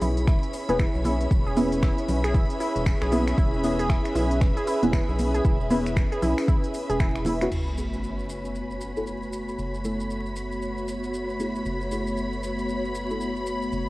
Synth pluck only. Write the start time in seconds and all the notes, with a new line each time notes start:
0.02 E4
0.28 E4
0.69 G#4
0.79 E4
1.05 E4
1.47 G#4
1.57 E4
1.83 E4
2.24 G#4
2.34 E4
2.60 E4
3.02 G#4
3.12 E4
3.38 E4
3.79 G#4
3.90 E4
4.15 E4
4.57 G#4
4.67 E4
4.93 E4
5.34 G#4
5.45 E4
5.71 E4
6.12 G#4
6.22 E4
6.48 E4
6.90 G#4
7.00 E4
7.26 E4